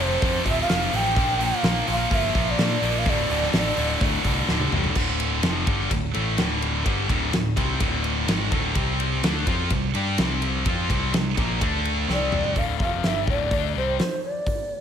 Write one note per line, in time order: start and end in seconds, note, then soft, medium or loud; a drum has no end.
0.00 0.16 F1 loud
0.00 0.21 F2 medium
0.00 0.22 C3 loud
0.00 0.23 F3 loud
0.00 0.48 C5 loud
0.22 0.44 F2 medium
0.22 0.39 F2 medium
0.22 0.45 C3 loud
0.22 0.46 F3 loud
0.22 kick loud
0.22 open hi-hat medium
0.45 0.63 D1 medium
0.45 0.67 F2 medium
0.45 0.68 C3 medium
0.45 0.69 F3 loud
0.45 0.59 E5 loud
0.45 kick medium
0.45 open hi-hat medium
0.62 0.98 F5 loud
0.69 0.87 F1 medium
0.69 0.92 F2 medium
0.69 0.93 C3 loud
0.69 0.94 F3 medium
0.69 snare loud
0.69 open hi-hat medium
0.93 1.17 A1 medium
0.93 1.16 F2 medium
0.93 1.16 C3 medium
0.93 1.17 F3 medium
0.93 1.46 G5 loud
0.93 open hi-hat medium
1.16 1.50 A#1 loud
1.16 1.39 A#2 medium
1.16 1.40 F3 loud
1.16 1.40 A#3 loud
1.16 kick loud
1.16 open hi-hat medium
1.40 1.63 A#2 medium
1.40 1.65 F3 medium
1.40 1.64 A#3 medium
1.40 open hi-hat medium
1.44 1.90 F5 loud
1.63 1.80 A#1 loud
1.63 1.87 A#2 loud
1.63 1.89 F3 medium
1.63 1.88 A#3 loud
1.63 snare loud
1.63 open hi-hat medium
1.87 2.05 A#1 medium
1.87 2.11 A#2 medium
1.87 2.12 F3 medium
1.87 2.12 A#3 medium
1.87 2.16 F5 loud
1.87 open hi-hat medium
2.11 2.28 G1 loud
2.11 2.34 A#2 loud
2.11 2.35 F3 loud
2.11 2.34 A#3 loud
2.11 2.52 E5 loud
2.11 kick loud
2.11 open hi-hat medium
2.35 2.52 A#1 medium
2.35 2.58 A#2 medium
2.35 2.59 F3 medium
2.35 2.59 A#3 medium
2.35 kick medium
2.35 open hi-hat medium
2.51 3.00 D5 medium
2.58 2.76 A#2 medium
2.58 2.82 A#2 medium
2.58 2.83 F3 loud
2.58 2.83 A#3 loud
2.58 snare loud
2.58 open hi-hat medium
2.82 3.08 A#1 medium
2.82 3.05 A#2 medium
2.82 3.06 F3 loud
2.82 3.06 A#3 loud
2.82 open hi-hat medium
2.98 3.11 F5 medium
3.06 3.23 D1 loud
3.06 3.30 D2 loud
3.06 3.30 A2 medium
3.06 3.30 D3 loud
3.06 3.55 D5 medium
3.06 kick loud
3.06 open hi-hat medium
3.30 3.47 D1 medium
3.30 3.53 D2 medium
3.30 3.53 A2 medium
3.30 3.54 D3 loud
3.30 open hi-hat medium
3.43 snare soft
3.53 3.71 A1 medium
3.53 3.76 D2 medium
3.53 3.77 A2 medium
3.53 3.77 D3 loud
3.53 4.00 D5 medium
3.53 snare loud
3.53 open hi-hat medium
3.77 3.94 D1 medium
3.77 4.01 D2 medium
3.77 4.02 A2 medium
3.77 4.02 D3 medium
3.77 open hi-hat medium
4.00 4.18 D2 medium
4.00 4.24 D2 loud
4.00 4.25 A2 loud
4.00 4.25 D3 loud
4.00 kick loud
4.00 open hi-hat medium
4.24 4.41 C2 medium
4.24 4.48 D2 medium
4.24 4.49 A2 medium
4.24 4.49 D3 medium
4.24 kick medium
4.24 open hi-hat medium
4.48 4.65 D1 medium
4.48 4.72 D2 medium
4.48 4.73 A2 medium
4.48 4.74 D3 medium
4.48 snare medium
4.60 high tom medium
4.72 4.89 C2 medium
4.72 4.95 D2 medium
4.72 4.96 A2 medium
4.72 4.96 D3 loud
4.72 mid tom medium
4.84 floor tom medium
4.95 5.40 D1 medium
4.95 5.43 D2 medium
4.95 5.44 A2 medium
4.95 5.44 D3 loud
4.95 kick loud
4.95 crash loud
5.20 ride medium
5.43 5.65 F1 medium
5.43 5.67 F2 loud
5.43 5.67 C3 loud
5.43 5.67 F3 loud
5.43 snare loud
5.43 ride medium
5.67 5.89 G1 loud
5.67 5.90 G2 medium
5.67 5.91 D3 medium
5.67 5.91 G3 loud
5.67 kick loud
5.67 ride medium
5.91 6.13 D1 medium
5.91 6.10 D2 medium
5.91 6.10 A2 medium
5.91 kick medium
5.91 ride loud
6.14 6.37 A1 loud
6.14 6.37 A2 medium
6.14 6.38 E3 loud
6.14 6.38 A3 loud
6.14 ride medium
6.38 6.83 D1 medium
6.38 6.84 D2 medium
6.38 6.85 A2 medium
6.38 6.84 D3 loud
6.38 snare loud
6.38 ride medium
6.62 ride medium
6.85 7.08 G1 medium
6.85 7.08 G2 medium
6.85 7.09 D3 medium
6.85 7.09 G3 medium
6.85 kick loud
6.85 ride medium
7.09 7.32 D1 medium
7.09 7.32 D2 medium
7.09 7.32 A2 loud
7.09 7.33 D3 loud
7.09 kick loud
7.09 ride medium
7.33 7.55 D1 medium
7.33 7.52 D2 medium
7.33 7.53 A2 medium
7.33 snare loud
7.33 ride medium
7.56 7.79 C2 loud
7.56 7.80 C3 medium
7.56 7.80 G3 loud
7.56 7.80 C4 loud
7.56 kick loud
7.56 ride medium
7.80 8.25 D1 loud
7.80 8.27 D2 medium
7.80 8.28 A2 loud
7.80 8.28 D3 loud
7.80 kick loud
7.80 ride loud
8.04 ride medium
8.27 8.50 G#1 medium
8.27 8.51 G#2 medium
8.27 8.51 D#3 loud
8.27 8.52 G#3 loud
8.27 snare loud
8.27 ride loud
8.51 8.74 D1 medium
8.51 8.75 D2 medium
8.51 8.75 A2 loud
8.51 8.75 D3 medium
8.51 kick loud
8.51 ride medium
8.75 9.20 C2 medium
8.75 9.22 C3 medium
8.75 9.23 G3 medium
8.75 9.23 C4 medium
8.75 kick loud
8.75 ride medium
9.00 ride medium
9.24 9.46 D2 medium
9.24 9.47 D3 medium
9.24 9.47 A3 loud
9.24 9.47 D4 loud
9.24 snare loud
9.24 ride loud
9.47 9.69 F2 loud
9.47 9.71 F3 medium
9.47 9.71 C4 medium
9.47 9.71 F4 medium
9.47 kick loud
9.47 ride medium
9.70 9.93 C2 medium
9.70 9.91 C3 medium
9.70 9.91 G3 medium
9.70 kick medium
9.70 ride medium
9.94 10.17 G2 medium
9.94 10.18 G3 medium
9.94 10.18 D4 loud
9.94 10.19 G4 loud
9.94 ride medium
10.18 10.63 C2 medium
10.18 10.66 C3 medium
10.18 10.66 G3 medium
10.18 10.67 C4 medium
10.18 snare loud
10.18 ride loud
10.42 ride medium
10.66 10.88 F2 loud
10.66 10.90 F3 medium
10.66 10.90 C4 medium
10.66 10.91 F4 loud
10.66 kick loud
10.66 ride medium
10.89 11.12 C2 medium
10.89 11.13 C3 medium
10.89 11.14 G3 loud
10.89 11.14 C4 medium
10.89 kick loud
10.89 ride medium
11.14 11.36 C2 medium
11.14 11.33 C3 medium
11.14 11.33 G3 medium
11.14 snare loud
11.14 ride medium
11.37 11.59 A#1 loud
11.37 11.60 A#2 medium
11.37 11.61 F3 loud
11.37 11.61 A#3 loud
11.37 kick loud
11.37 ride medium
11.61 12.05 D2 medium
11.61 12.08 D3 medium
11.61 12.08 A3 loud
11.61 12.08 D4 loud
11.61 kick loud
11.61 ride medium
11.85 ride medium
12.08 12.53 C2 medium
12.08 12.56 C3 medium
12.08 12.56 G3 medium
12.08 12.56 C4 loud
12.08 snare medium
12.12 12.60 D5 medium
12.32 mid tom medium
12.44 floor tom medium
12.56 12.78 D1 medium
12.56 12.79 D2 medium
12.56 12.80 A2 medium
12.56 12.80 D3 loud
12.56 12.80 F5 loud
12.56 kick medium
12.56 open hi-hat medium
12.80 13.02 F1 medium
12.80 13.03 F2 medium
12.80 13.04 C3 medium
12.80 13.04 F3 medium
12.80 13.06 F5 medium
12.80 kick loud
13.03 13.26 G1 medium
13.03 13.27 G2 medium
13.03 13.28 D3 medium
13.03 13.28 G3 loud
13.03 13.28 E5 medium
13.03 snare loud
13.03 open hi-hat medium
13.27 13.50 D1 medium
13.27 13.51 D2 medium
13.27 13.51 A2 loud
13.27 13.51 D3 loud
13.27 13.72 D5 medium
13.27 kick loud
13.51 13.73 D2 medium
13.51 13.75 D3 medium
13.51 13.75 A3 medium
13.51 13.75 D4 medium
13.51 kick loud
13.51 open hi-hat medium
13.75 13.97 C2 medium
13.75 13.99 C3 medium
13.75 13.99 G3 medium
13.75 14.00 C4 medium
13.75 13.98 C5 medium
13.99 14.21 C5 medium
13.99 snare loud
13.99 open hi-hat medium
14.24 14.81 D5 medium
14.47 kick medium
14.47 open hi-hat soft